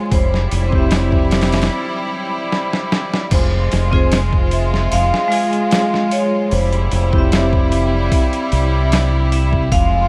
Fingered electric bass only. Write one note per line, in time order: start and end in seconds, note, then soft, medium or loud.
0.12 0.47 F1 medium
0.52 1.68 F1 medium
3.32 3.67 F1 loud
3.73 4.89 F1 loud
4.92 5.10 F1 medium
6.52 6.87 F1 medium
6.92 8.08 F1 medium
8.53 9.68 C2 medium
9.72 10.07 F1 medium